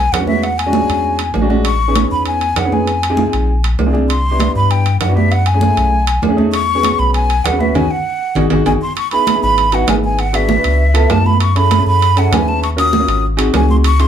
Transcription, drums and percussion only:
0.12 high conga, high timbale, low timbale
0.27 high conga
0.43 high conga, high timbale
0.58 high conga, high timbale
0.73 high conga, low timbale
0.88 high conga, high timbale
1.04 high conga
1.19 high conga, high timbale
1.34 high conga, low timbale
1.50 high conga
1.65 high timbale
1.81 high conga
1.95 high conga, high timbale, low timbale
2.11 high conga
2.26 high conga, high timbale
2.41 high conga, high timbale
2.56 high conga, high timbale, low timbale
2.72 high conga
2.87 high conga, high timbale
3.02 high conga, high timbale
3.17 high conga, low timbale
3.32 high conga, high timbale
3.47 high conga
3.63 high conga, high timbale
3.79 high conga, low timbale
3.95 high conga
4.10 high conga, high timbale
4.24 high conga
4.39 high conga, high timbale, low timbale
4.55 high conga
4.71 high conga, high timbale
4.86 high conga, high timbale
5.01 high conga, high timbale, low timbale
5.17 high conga
5.32 high timbale
5.46 high conga, high timbale
5.61 high conga, low timbale
5.77 high conga, high timbale
5.92 high conga
6.07 high conga, high timbale
6.22 high conga, low timbale
6.38 high conga
6.54 high timbale
6.69 high conga
6.83 high conga, high timbale, low timbale
7.00 high conga
7.14 high conga, high timbale
7.30 high conga, high timbale
7.45 high conga, high timbale, low timbale
7.60 high conga
7.75 low conga, high timbale
8.35 low conga, high timbale
8.50 low conga, high timbale
8.66 low conga, high timbale
8.96 high conga, high timbale
9.11 high conga, high timbale
9.27 high conga, high timbale, low timbale
9.42 high conga
9.57 high conga, high timbale
9.72 high conga, high timbale
9.87 high conga, high timbale, low timbale
10.03 high conga
10.19 high conga, high timbale
10.34 high conga, high timbale
10.49 high conga, low timbale
10.64 high timbale
10.80 high conga
10.95 high conga, high timbale
11.10 high conga, high timbale, low timbale
11.26 high conga
11.40 high conga, high timbale
11.56 high conga, high timbale
11.71 high conga, high timbale, low timbale
11.87 high conga
12.01 high conga, high timbale
12.17 high conga, high timbale
12.32 high conga, high timbale, low timbale
12.47 high conga
12.62 high conga, high timbale
12.78 high conga, high timbale
12.93 high conga, low timbale
13.08 high timbale
13.23 high conga
13.39 high conga, high timbale
13.54 high conga, high timbale, low timbale
13.69 high conga
13.83 high conga, high timbale
13.99 high conga, high timbale

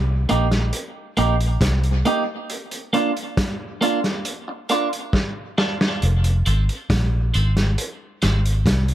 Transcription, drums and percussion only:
0.29 closed hi-hat
0.51 snare, closed hi-hat
0.73 closed hi-hat
1.17 closed hi-hat
1.41 closed hi-hat
1.61 kick, snare, closed hi-hat
1.83 closed hi-hat
2.05 closed hi-hat
2.50 closed hi-hat
2.71 closed hi-hat
2.94 closed hi-hat
3.17 closed hi-hat
3.37 kick, snare, closed hi-hat
3.82 closed hi-hat
4.04 snare, closed hi-hat
4.25 closed hi-hat
4.69 closed hi-hat
4.93 closed hi-hat
5.13 kick, snare
5.58 snare
5.81 snare
6.02 closed hi-hat
6.24 closed hi-hat
6.46 closed hi-hat
6.69 closed hi-hat
6.90 kick, snare, closed hi-hat
7.34 closed hi-hat
7.57 snare, closed hi-hat
7.78 closed hi-hat
8.22 snare, closed hi-hat
8.46 closed hi-hat
8.66 kick, snare, closed hi-hat
8.88 closed hi-hat

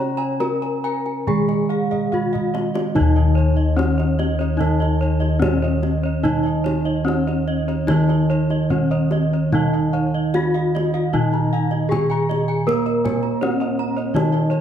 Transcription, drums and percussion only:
0.40 kendang high
0.63 kendang slap
0.85 kendang slap
1.06 kendang slap
1.28 kendang low
1.49 kendang slap
1.70 kendang slap
1.93 kendang low
2.13 kendang low
2.35 kendang low
2.55 kendang high
2.75 kendang high
2.96 kendang low
3.79 kendang high
4.00 kendang slap
4.19 kendang high
4.41 kendang slap
4.61 kendang low
4.82 kendang slap
5.22 kendang slap
5.42 kendang high, kendang low
5.83 kendang high
6.25 kendang low
6.66 kendang high
7.08 kendang high
7.29 kendang slap
7.69 kendang slap
7.88 kendang high, kendang low
8.10 kendang slap
8.50 kendang slap
8.70 kendang low
9.11 kendang high
9.53 kendang low
10.34 kendang high
10.55 kendang slap
10.76 kendang high
10.95 kendang slap
11.13 kendang low
11.33 kendang slap
11.73 kendang slap
11.92 kendang high, kendang low
12.31 kendang high
12.69 kendang low
12.87 kendang slap
13.06 kendang high, kendang low
13.24 kendang slap
13.43 kendang high
13.61 kendang slap
13.99 kendang slap
14.16 kendang high, kendang low
14.34 kendang slap

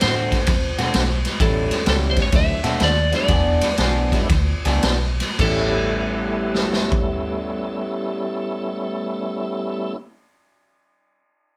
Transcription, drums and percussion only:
0.01 snare, ride
0.32 kick, snare, ride
0.46 kick, snare, ride
0.78 snare, ride
0.94 snare, ride
1.25 snare, ride
1.40 kick, snare, ride
1.71 snare, ride
1.86 snare, ride
2.17 kick, snare, ride
2.32 kick, snare, ride
2.64 snare, ride
2.80 snare, ride
3.12 snare, ride
3.28 kick, snare, ride
3.61 snare, ride
3.77 snare, ride
4.12 kick, snare, ride
4.29 kick, snare, ride
4.65 snare, ride
4.83 snare, ride
5.20 snare, ride
5.39 kick, crash
6.55 snare
6.73 snare
6.92 kick

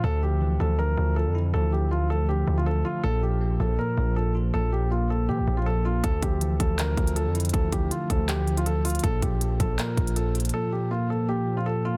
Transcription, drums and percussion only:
6.04 kick, closed hi-hat
6.22 kick, closed hi-hat
6.41 closed hi-hat
6.60 kick, closed hi-hat
6.79 clap, closed hi-hat
6.97 kick, closed hi-hat
7.07 closed hi-hat
7.16 closed hi-hat
7.35 closed hi-hat
7.40 closed hi-hat
7.45 closed hi-hat
7.49 closed hi-hat
7.54 kick, closed hi-hat
7.72 kick, closed hi-hat
7.91 closed hi-hat
8.10 kick, closed hi-hat
8.29 clap, closed hi-hat
8.47 closed hi-hat
8.57 closed hi-hat
8.66 closed hi-hat
8.85 closed hi-hat, open hi-hat
8.90 closed hi-hat
8.95 closed hi-hat
8.99 closed hi-hat
9.04 kick, closed hi-hat
9.22 kick, closed hi-hat
9.41 closed hi-hat
9.60 kick, closed hi-hat
9.79 clap, closed hi-hat
9.97 kick, closed hi-hat
10.07 closed hi-hat
10.16 closed hi-hat
10.35 closed hi-hat
10.40 closed hi-hat
10.45 closed hi-hat
10.49 closed hi-hat

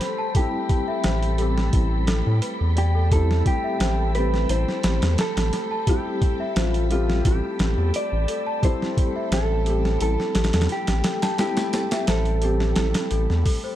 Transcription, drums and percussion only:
0.01 snare, closed hi-hat
0.35 kick, closed hi-hat
0.69 kick, closed hi-hat
1.04 snare, closed hi-hat
1.23 closed hi-hat
1.38 closed hi-hat
1.58 snare
1.73 kick, closed hi-hat
2.07 snare, closed hi-hat
2.42 closed hi-hat
2.77 closed hi-hat
3.11 kick, closed hi-hat
3.31 snare
3.46 kick, closed hi-hat
3.80 snare, closed hi-hat
4.15 closed hi-hat
4.34 snare
4.49 closed hi-hat
4.68 snare
4.83 snare, closed hi-hat
5.02 snare, closed hi-hat
5.18 snare, closed hi-hat
5.37 snare, closed hi-hat
5.53 snare, closed hi-hat
5.87 kick, closed hi-hat
6.22 kick, closed hi-hat
6.56 snare, closed hi-hat
6.74 closed hi-hat
6.91 closed hi-hat
7.10 snare
7.25 kick, closed hi-hat
7.59 snare, closed hi-hat
7.94 closed hi-hat
8.28 closed hi-hat
8.63 kick, closed hi-hat
8.82 snare
8.97 kick, closed hi-hat
9.32 snare, closed hi-hat
9.66 closed hi-hat
9.85 snare
10.01 closed hi-hat
10.20 snare
10.35 snare, closed hi-hat
10.44 snare, closed hi-hat
10.53 snare, closed hi-hat
10.61 snare, closed hi-hat
10.69 snare, closed hi-hat
10.87 snare, closed hi-hat
11.04 snare, closed hi-hat
11.22 snare, closed hi-hat
11.38 snare, closed hi-hat
11.57 snare, closed hi-hat
11.73 snare, closed hi-hat
11.91 snare, closed hi-hat
12.07 snare, closed hi-hat
12.25 closed hi-hat
12.42 closed hi-hat
12.60 snare
12.76 snare, closed hi-hat
12.94 snare, closed hi-hat
13.11 closed hi-hat
13.30 snare
13.46 kick, open hi-hat

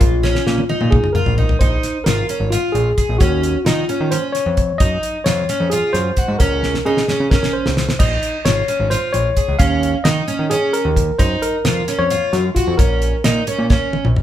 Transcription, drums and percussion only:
0.01 kick, closed hi-hat
0.24 snare
0.35 snare
0.47 snare
0.58 high tom
0.70 high tom
0.81 mid tom
0.92 kick, mid tom
1.04 mid tom
1.15 mid tom
1.26 floor tom
1.38 floor tom
1.49 floor tom
1.61 kick, closed hi-hat
1.83 snare, closed hi-hat
2.06 snare, closed hi-hat
2.29 closed hi-hat
2.52 snare, closed hi-hat
2.75 closed hi-hat
2.98 kick, closed hi-hat
3.21 kick, closed hi-hat
3.43 closed hi-hat
3.66 snare, closed hi-hat
3.89 closed hi-hat
4.12 closed hi-hat
4.35 snare, closed hi-hat
4.57 kick, closed hi-hat
4.80 kick, closed hi-hat
5.03 closed hi-hat
5.26 snare, closed hi-hat
5.49 snare, closed hi-hat
5.71 closed hi-hat
5.95 snare, closed hi-hat
6.17 kick, closed hi-hat
6.40 kick, closed hi-hat
6.63 snare
6.74 snare
6.97 snare
7.08 snare
7.31 kick, snare
7.43 snare
7.66 snare
7.77 snare
7.89 snare
8.00 kick, closed hi-hat, crash
8.23 closed hi-hat
8.46 snare, closed hi-hat
8.68 closed hi-hat
8.92 snare, closed hi-hat
9.14 closed hi-hat
9.37 kick, closed hi-hat
9.60 kick, closed hi-hat
9.83 closed hi-hat
10.05 snare, closed hi-hat
10.28 closed hi-hat
10.51 closed hi-hat
10.74 closed hi-hat
10.96 kick, closed hi-hat
11.19 kick, closed hi-hat
11.43 closed hi-hat
11.65 snare, closed hi-hat
11.88 snare, closed hi-hat
12.10 closed hi-hat
12.33 snare, closed hi-hat
12.56 kick, closed hi-hat
12.79 kick, closed hi-hat
13.02 closed hi-hat
13.24 snare, closed hi-hat
13.47 closed hi-hat
13.70 kick, snare
13.93 high tom
14.05 mid tom
14.16 mid tom

